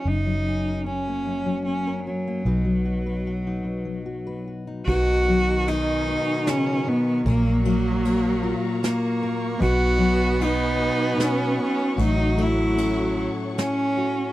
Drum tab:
RD |------|------|x-x-x-|xxx-x-|
SD |------|------|----o-|----o-|
BD |------|------|o-----|o-----|

RD |x-x-x-|xxx-x-|
SD |----o-|----o-|
BD |o-----|o-----|